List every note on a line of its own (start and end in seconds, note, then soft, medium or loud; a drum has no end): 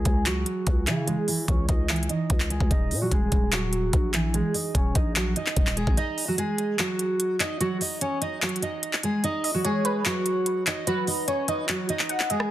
0.00 0.24 G#3 medium
0.00 0.23 G#4 medium
0.05 0.45 C#2 loud
0.05 kick medium
0.05 closed hi-hat medium
0.26 0.84 F#3 medium
0.26 0.84 F#4 medium
0.26 clap loud
0.26 closed hi-hat medium
0.46 closed hi-hat medium
0.67 0.89 C#2 loud
0.67 kick medium
0.67 closed hi-hat medium
0.87 1.16 C#3 loud
0.87 1.07 E3 medium
0.87 1.06 E4 medium
0.87 clap medium
0.87 closed hi-hat medium
1.07 1.27 G#3 medium
1.07 1.26 G#4 loud
1.07 closed hi-hat medium
1.28 1.47 E3 medium
1.28 1.47 E4 medium
1.28 open hi-hat medium
1.48 1.68 C#2 loud
1.48 1.67 C#4 medium
1.48 1.68 C#5 medium
1.48 kick loud
1.48 closed hi-hat medium
1.69 2.08 C#2 loud
1.69 1.88 D#4 medium
1.69 1.88 D#5 medium
1.69 kick medium
1.69 closed hi-hat medium
1.89 2.09 E3 medium
1.89 2.08 E4 medium
1.89 clap loud
1.89 closed hi-hat soft
1.96 closed hi-hat medium
2.03 closed hi-hat medium
2.09 2.48 D#4 medium
2.09 2.48 D#5 medium
2.09 closed hi-hat medium
2.30 2.59 C#2 loud
2.30 kick medium
2.30 closed hi-hat medium
2.40 clap loud
2.50 2.70 G#3 medium
2.50 2.69 G#4 medium
2.50 closed hi-hat medium
2.60 2.70 C#2 loud
2.60 kick medium
2.71 2.93 D#1 loud
2.71 3.00 D#4 loud
2.71 3.00 D#5 medium
2.71 kick loud
2.71 closed hi-hat medium
2.91 3.11 A#2 loud
2.91 open hi-hat medium
3.02 3.11 F#3 medium
3.02 3.11 F#4 medium
3.11 3.31 D#1 loud
3.11 3.51 G#3 medium
3.11 3.50 G#4 medium
3.11 kick medium
3.11 closed hi-hat medium
3.32 3.91 D#1 loud
3.32 kick medium
3.32 closed hi-hat medium
3.52 4.10 F#3 medium
3.52 4.10 F#4 medium
3.52 clap loud
3.52 closed hi-hat medium
3.73 closed hi-hat medium
3.93 4.42 A#1 loud
3.93 kick medium
3.93 closed hi-hat medium
4.14 4.33 E3 medium
4.14 4.33 E4 medium
4.14 clap medium
4.14 closed hi-hat medium
4.34 4.54 G#3 medium
4.34 4.53 G#4 loud
4.34 closed hi-hat medium
4.54 4.73 D#4 medium
4.54 4.74 D#5 medium
4.54 open hi-hat medium
4.75 4.94 D#1 loud
4.75 4.94 C#4 medium
4.75 4.94 C#5 medium
4.75 kick medium
4.75 closed hi-hat medium
4.95 5.34 A#1 loud
4.95 5.14 D#4 medium
4.95 5.15 D#5 medium
4.95 kick medium
4.95 closed hi-hat medium
5.16 5.35 F#3 medium
5.16 5.35 F#4 medium
5.16 clap loud
5.16 closed hi-hat medium
5.36 5.75 D#4 medium
5.36 5.75 D#5 medium
5.36 closed hi-hat medium
5.46 clap medium
5.56 5.79 D#1 loud
5.56 kick medium
5.56 closed hi-hat medium
5.67 clap loud
5.77 5.87 E1 loud
5.77 5.96 G#3 medium
5.77 5.96 G#4 medium
5.77 closed hi-hat medium
5.87 5.97 G#1 loud
5.87 kick medium
5.97 6.26 D#4 loud
5.97 6.27 D#5 medium
5.97 closed hi-hat medium
6.18 open hi-hat medium
6.28 6.38 F#3 medium
6.28 6.38 F#4 medium
6.38 6.77 G#3 medium
6.38 6.76 G#4 medium
6.38 closed hi-hat medium
6.58 closed hi-hat medium
6.79 7.37 F#3 medium
6.79 7.37 F#4 medium
6.79 clap loud
6.79 closed hi-hat medium
6.99 closed hi-hat medium
7.20 closed hi-hat medium
7.40 7.59 D#4 medium
7.40 7.59 D#5 medium
7.40 clap medium
7.40 closed hi-hat medium
7.60 7.80 F#3 medium
7.60 7.79 F#4 loud
7.60 closed hi-hat medium
7.81 8.00 D#4 medium
7.81 8.00 D#5 medium
7.81 open hi-hat medium
8.01 8.20 C#4 medium
8.01 8.21 C#5 medium
8.01 closed hi-hat medium
8.22 8.41 D#4 medium
8.22 8.41 D#5 medium
8.22 closed hi-hat medium
8.42 8.62 F#3 medium
8.42 8.61 F#4 medium
8.42 clap loud
8.42 closed hi-hat soft
8.49 closed hi-hat medium
8.56 closed hi-hat medium
8.62 9.01 D#4 medium
8.62 9.01 D#5 medium
8.62 closed hi-hat medium
8.83 closed hi-hat medium
8.93 clap loud
9.03 9.23 G#3 medium
9.03 9.22 G#4 medium
9.03 closed hi-hat medium
9.24 9.53 D#4 loud
9.24 9.53 D#5 medium
9.24 closed hi-hat medium
9.44 9.64 D#5 medium
9.44 open hi-hat medium
9.54 9.64 F#3 medium
9.54 9.64 F#4 medium
9.65 10.03 G#3 medium
9.65 10.03 G#4 medium
9.65 9.84 C#5 loud
9.65 closed hi-hat medium
9.85 10.05 B4 medium
9.85 closed hi-hat medium
10.05 10.64 F#3 medium
10.05 10.63 F#4 medium
10.05 10.44 C#5 medium
10.05 clap loud
10.05 closed hi-hat medium
10.26 closed hi-hat medium
10.46 closed hi-hat medium
10.67 10.86 D#4 medium
10.67 10.86 D#5 medium
10.67 clap medium
10.67 closed hi-hat medium
10.87 11.07 F#3 medium
10.87 11.06 F#4 loud
10.87 11.26 B4 loud
10.87 closed hi-hat medium
11.07 11.27 D#4 medium
11.07 11.27 D#5 medium
11.07 open hi-hat medium
11.28 11.47 C#4 medium
11.28 11.47 C#5 medium
11.28 closed hi-hat medium
11.48 11.67 D#4 medium
11.48 11.68 D#5 medium
11.48 closed hi-hat medium
11.69 11.88 F#3 medium
11.69 11.88 F#4 medium
11.69 clap loud
11.69 closed hi-hat medium
11.89 12.28 D#4 medium
11.89 12.28 D#5 medium
11.89 closed hi-hat medium
11.99 clap medium
12.09 12.29 F#5 medium
12.09 closed hi-hat medium
12.20 clap loud
12.30 12.50 G#3 medium
12.30 12.49 G#4 medium
12.30 12.49 D#5 medium
12.30 closed hi-hat medium
12.40 cross-stick loud